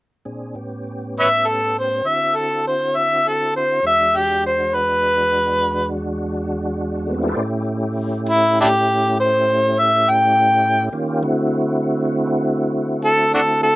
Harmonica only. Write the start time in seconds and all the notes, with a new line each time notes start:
1.19 B4 C#5 E5
1.48 A4
1.78 C5
2.07 E5
2.36 A4
2.67 C5
2.96 E5
3.28 A4
3.56 C5
3.87 E5
4.16 G4
4.46 C5
4.74 B4
8.29 E4
8.61 D4 E4 G4
9.20 C5
9.79 E5
10.10 G5
13.05 A4
13.34 D4 F#4 A4
13.63 A4